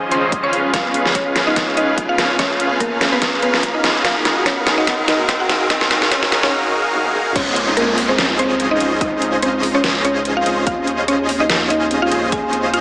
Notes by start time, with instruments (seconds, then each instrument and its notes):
Already playing: ambient pad C#3 F3 G#3 D#4 D#5, supersaw synth C#4 F4 G#4 C5 D#5, riser
0.10 clean electric guitar D#3 C#4 F4 G#4 C5, synth pluck C5 C6, closed hi-hat
0.32 kick, closed hi-hat
0.42 clean electric guitar D#3 C#4 F4 G#4 C5, supersaw synth C#4 F4 G#4 C5 F5, synth pluck C#5 C#6
0.53 ambient pad C#3 B3 F5, supersaw synth C#4 F4 G#4 B4 F5, closed hi-hat
0.74 supersaw synth C#4 F4 B4 F5, synth pluck F4 F5, kick, snare, closed hi-hat
0.85 synth arpeggio sound B3
0.94 synth arpeggio sound B3, closed hi-hat
1.05 synth arpeggio sound C#5, snare
1.15 synth pluck C#4 C#5, kick, closed hi-hat
1.26 synth arpeggio sound F4
1.36 snare, closed hi-hat
1.47 synth arpeggio sound B3, synth pluck D#4 D#5
1.56 synth arpeggio sound B3, kick, snare, closed hi-hat
1.68 synth arpeggio sound C#5
1.77 synth arpeggio sound C#4, synth pluck D#4 D#5, closed hi-hat
1.88 synth arpeggio sound F4
1.98 kick, closed hi-hat
2.09 synth arpeggio sound B3, synth pluck F4 F5
2.18 synth arpeggio sound B3, supersaw synth C#4 F4 G#4 B4 F5, snare, closed hi-hat
2.30 synth arpeggio sound C#5
2.39 supersaw synth C#4 G#4, synth arpeggio sound C#4, synth pluck C#4 C#5, kick, snare, closed hi-hat
2.50 synth arpeggio sound F4
2.60 closed hi-hat
2.71 synth arpeggio sound B3
2.80 synth pluck A#3 A#4, synth arpeggio sound B3, kick, closed hi-hat
2.92 synth arpeggio sound C#5
3.01 synth arpeggio sound C#4, snare, closed hi-hat
3.12 synth pluck B3 B4, synth arpeggio sound F4
3.22 kick, snare, closed hi-hat
3.33 synth arpeggio sound B3
3.42 synth arpeggio sound B3, synth pluck B3 B4, closed hi-hat
3.54 synth arpeggio sound C#5, snare
3.63 synth arpeggio sound C#4, kick, closed hi-hat
3.74 synth pluck D#4 D#5, synth arpeggio sound F4
3.84 supersaw synth C#4 F4 G#4 B4 F5, snare, closed hi-hat
3.95 synth arpeggio sound B3
4.05 ambient pad D#3 F#3 G#3, synth arpeggio sound A#3, supersaw synth D#4 F#4 G#4 A#4 F5, synth pluck F4 F5, kick, snare, closed hi-hat
4.16 synth arpeggio sound G#4
4.25 synth arpeggio sound C#4, snare, closed hi-hat
4.36 synth arpeggio sound D#4
4.46 synth pluck C#4 C#5, kick, snare, closed hi-hat
4.57 synth arpeggio sound A#3
4.67 synth arpeggio sound A#3, snare, closed hi-hat
4.78 synth pluck D#4 D#5, synth arpeggio sound G#4
4.87 synth arpeggio sound C#4, kick, snare, closed hi-hat
4.99 synth arpeggio sound D#4
5.08 synth pluck D#4 D#5, snare, closed hi-hat
5.19 synth arpeggio sound A#3
5.29 synth arpeggio sound A#3, kick, snare, closed hi-hat
5.40 synth pluck F#4 F#5, synth arpeggio sound G#4
5.49 synth arpeggio sound C#4, supersaw synth D#4 F#4 G#4 A#4 F5, snare, closed hi-hat
5.61 synth arpeggio sound D#4
5.70 synth pluck D#4 D#5, supersaw synth F#4, kick, snare, closed hi-hat
5.81 synth arpeggio sound A#3, snare
5.91 synth arpeggio sound A#3, snare, closed hi-hat
6.02 synth arpeggio sound G#4, snare
6.11 synth arpeggio sound C#4, synth pluck C#4 C#5, kick, snare, closed hi-hat
6.23 synth arpeggio sound D#4, snare
6.32 snare, closed hi-hat
6.43 synth arpeggio sound A#3, synth pluck C#4 C#5, snare
6.94 high tom
7.05 high tom
7.15 supersaw synth D#4 F#4 G#4 A#4 F5, mid tom
7.26 mid tom
7.36 sub bass C#2, ambient pad F3 D#4, synth arpeggio sound C4, synth pluck C#4 C#5, supersaw synth C#4 F4 G#4 C5 D#5, kick, closed hi-hat, crash, downlifter
7.47 synth arpeggio sound C5
7.56 synth arpeggio sound C#4, closed hi-hat
7.68 synth arpeggio sound D#4
7.77 synth pluck A#3 A#4, closed hi-hat
7.88 synth arpeggio sound C4
7.98 synth arpeggio sound C4, open hi-hat
8.09 synth pluck C4 C5, synth arpeggio sound C5
8.18 synth arpeggio sound C#4, snare, closed hi-hat
8.30 synth arpeggio sound D#4
8.39 synth pluck C4 C5, closed hi-hat
8.50 synth arpeggio sound C4
8.60 synth arpeggio sound C4, closed hi-hat
8.71 synth pluck D#4 D#5, synth arpeggio sound C5
8.80 sub bass C#2, supersaw synth C#4 F4 G#4 C5 D#5, synth arpeggio sound C#4, closed hi-hat
8.92 synth arpeggio sound D#4
9.01 sub bass C#2, supersaw synth C#4 F4 G#4 C5 D#5, synth pluck D#4 D#5, kick, closed hi-hat
9.13 synth arpeggio sound C4
9.22 synth arpeggio sound C4, closed hi-hat
9.33 synth arpeggio sound C5
9.43 synth pluck C4 C5, synth arpeggio sound C#4, closed hi-hat
9.54 synth arpeggio sound D#4
9.63 open hi-hat
9.74 synth arpeggio sound C4, synth pluck C#4 C#5
9.84 synth arpeggio sound C4, snare, closed hi-hat
9.95 synth arpeggio sound C5
10.05 synth arpeggio sound C#4, synth pluck C#4 C#5, closed hi-hat
10.16 synth arpeggio sound D#4
10.25 closed hi-hat
10.37 synth arpeggio sound C4, synth pluck F4 F5
10.46 sub bass C#2, synth arpeggio sound C4, supersaw synth C#4 F4 G#4 C5 D#5, closed hi-hat
10.57 synth arpeggio sound C5
10.66 sub bass D#2, ambient pad C#3 G#3 C5 F5, synth arpeggio sound C4, synth pluck F4 F5, supersaw synth G#4 C5 D#5, kick, closed hi-hat
10.78 synth arpeggio sound C#4
10.87 closed hi-hat
10.99 synth arpeggio sound A#3
11.08 synth arpeggio sound A#3, synth pluck C#4 C#5, closed hi-hat
11.19 synth arpeggio sound G#4
11.29 synth arpeggio sound C4, open hi-hat
11.40 synth arpeggio sound C#4, synth pluck D#4 D#5
11.50 snare, closed hi-hat
11.61 synth arpeggio sound A#3
11.70 synth arpeggio sound A#3, synth pluck D#4 D#5, closed hi-hat
11.81 synth arpeggio sound G#4
11.91 synth arpeggio sound C4, closed hi-hat
12.02 synth arpeggio sound C#4, synth pluck F4 F5
12.11 sub bass D#2, supersaw synth C#4 F4 G#4 C5 D#5, closed hi-hat
12.23 synth arpeggio sound A#3
12.32 sub bass D#2, synth arpeggio sound A#3, supersaw synth C#4 F4 G#4 C5, synth pluck G#4 G#5, kick, closed hi-hat
12.44 synth arpeggio sound G#4
12.53 synth arpeggio sound C4, closed hi-hat
12.64 synth arpeggio sound C#4
12.74 synth pluck F4 F5, closed hi-hat